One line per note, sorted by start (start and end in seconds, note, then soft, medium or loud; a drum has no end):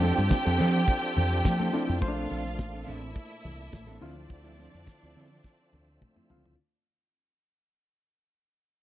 0.00 0.11 F2 loud
0.00 0.37 F3 medium
0.00 2.00 F3 medium
0.00 0.37 C4 medium
0.00 1.98 C4 medium
0.00 0.20 C4 medium
0.00 0.37 D4 medium
0.00 3.98 D4 medium
0.00 0.17 D4 medium
0.00 1.98 G4 medium
0.00 0.38 A4 medium
0.00 2.00 A4 medium
0.00 1.98 G5 loud
0.00 open hi-hat medium
0.00 muted conga medium
0.04 0.16 A4 medium
0.17 0.29 G2 medium
0.17 muted clean electric guitar stroke soft
0.17 snare soft
0.17 closed hi-hat medium
0.30 muted clean electric guitar stroke soft
0.30 kick loud
0.30 snare loud
0.30 closed hi-hat medium
0.30 high conga medium
0.45 0.58 F2 medium
0.45 0.57 C4 medium
0.45 0.58 D4 medium
0.45 0.59 A4 medium
0.58 0.84 F3 loud
0.58 0.81 C4 loud
0.58 0.74 D4 loud
0.58 0.73 A4 loud
0.58 open hi-hat medium
0.58 low conga medium
0.74 muted clean electric guitar stroke medium
0.74 closed hi-hat soft
0.87 muted clean electric guitar stroke soft
0.87 kick loud
0.87 closed hi-hat medium
0.87 muted conga soft
1.02 muted clean electric guitar stroke soft
1.16 1.41 F2 medium
1.16 open hi-hat medium
1.16 low conga medium
1.30 muted clean electric guitar stroke medium
1.30 closed hi-hat soft
1.44 1.69 F3 loud
1.44 muted clean electric guitar stroke soft
1.44 kick loud
1.44 snare loud
1.44 closed hi-hat medium
1.44 high conga medium
1.59 1.71 C4 medium
1.59 1.72 D4 medium
1.59 1.73 A4 medium
1.59 high conga medium
1.72 1.93 F3 medium
1.72 1.95 C4 medium
1.72 1.93 C4 medium
1.72 1.88 D4 medium
1.72 1.94 D4 medium
1.72 1.94 E4 medium
1.72 1.86 A4 medium
1.72 open hi-hat medium
1.88 2.00 F2 loud
1.88 muted clean electric guitar stroke soft
1.88 closed hi-hat medium
2.01 2.26 A#1 loud
2.01 2.80 A#2 medium
2.01 4.00 A#2 medium
2.01 2.80 A3 medium
2.01 4.00 A3 medium
2.01 2.09 C#4 medium
2.01 2.86 F4 medium
2.01 2.80 C5 loud
2.01 2.86 F5 loud
2.01 muted clean electric guitar stroke soft
2.01 kick loud
2.01 closed hi-hat medium
2.01 muted conga medium
2.08 2.83 D4 medium
2.16 2.28 C4 medium
2.16 2.29 D4 medium
2.16 2.30 A4 medium
2.29 2.59 A#1 loud
2.29 2.47 C4 medium
2.29 2.45 D4 medium
2.29 2.43 A4 medium
2.29 open hi-hat medium
2.29 muted conga medium
2.45 muted clean electric guitar stroke soft
2.45 snare soft
2.45 closed hi-hat medium
2.58 2.83 A1 loud
2.58 kick loud
2.58 snare loud
2.58 closed hi-hat medium
2.58 high conga medium
2.74 2.85 C4 soft
2.74 2.86 D4 medium
2.74 2.87 A4 medium
2.87 3.12 A1 medium
2.87 3.09 C4 medium
2.87 3.02 D4 medium
2.87 4.00 E4 medium
2.87 3.01 A4 loud
2.87 3.99 E5 loud
2.87 open hi-hat medium
2.87 low conga medium
3.01 muted clean electric guitar stroke soft
3.01 closed hi-hat soft
3.15 muted clean electric guitar stroke soft
3.15 kick loud
3.15 closed hi-hat medium
3.15 muted conga soft
3.30 muted clean electric guitar stroke soft
3.44 3.69 C2 medium
3.44 open hi-hat medium
3.44 low conga medium
3.59 muted clean electric guitar stroke soft
3.59 closed hi-hat soft
3.72 3.97 A1 medium
3.72 muted clean electric guitar stroke soft
3.72 kick loud
3.72 snare loud
3.72 closed hi-hat medium
3.72 high conga medium
3.87 4.00 C4 medium
3.87 4.02 D4 medium
3.87 4.04 A4 medium
3.87 high conga medium
4.00 4.26 D2 medium
4.00 4.93 D3 medium
4.00 6.56 D3 medium
4.00 4.23 F3 medium
4.00 6.56 F3 medium
4.00 4.93 C4 medium
4.00 4.16 C4 loud
4.00 6.56 C4 medium
4.00 6.54 D4 medium
4.00 4.93 E4 medium
4.00 4.14 E4 medium
4.00 4.94 F4 loud
4.00 6.54 D5 loud
4.00 6.56 E5 medium
4.00 open hi-hat medium
4.16 muted clean electric guitar stroke soft
4.16 closed hi-hat medium
4.29 4.67 D2 loud
4.29 muted clean electric guitar stroke soft
4.29 kick loud
4.29 closed hi-hat medium
4.29 muted conga medium
4.44 4.57 F3 medium
4.44 4.58 C4 medium
4.44 4.59 E4 medium
4.58 4.76 F3 medium
4.58 4.73 C4 medium
4.58 4.72 E4 medium
4.58 open hi-hat medium
4.58 muted conga medium
4.73 4.85 F2 medium
4.73 muted clean electric guitar stroke medium
4.73 closed hi-hat soft
4.86 muted clean electric guitar stroke soft
4.86 kick loud
4.86 snare loud
4.86 closed hi-hat medium
4.86 high conga medium
5.02 5.14 D2 loud
5.02 5.14 F3 soft
5.02 5.15 C4 soft
5.02 5.16 E4 medium
5.15 5.40 D3 loud
5.15 5.37 F3 loud
5.15 5.31 C4 loud
5.15 5.30 E4 loud
5.15 open hi-hat medium
5.15 low conga medium
5.30 muted clean electric guitar stroke medium
5.30 closed hi-hat soft
5.44 muted clean electric guitar stroke soft
5.44 kick loud
5.44 snare medium
5.44 muted conga soft
5.60 muted clean electric guitar stroke soft
5.73 5.97 D2 loud
5.73 high tom medium
5.73 low conga medium
5.88 muted clean electric guitar stroke medium
6.01 muted clean electric guitar stroke soft
6.01 kick medium
6.01 mid tom medium
6.01 high conga medium
6.16 6.28 F3 medium
6.16 6.29 C4 medium
6.16 6.30 E4 medium
6.16 mid tom medium
6.16 high conga medium
6.29 6.55 C#2 medium
6.29 6.50 D3 medium
6.29 6.52 F3 medium
6.29 6.50 C4 medium
6.29 6.45 C4 medium
6.29 6.50 E4 medium
6.29 6.44 E4 medium
6.29 6.50 F4 medium
6.29 floor tom medium
6.45 muted clean electric guitar stroke soft
6.45 floor tom medium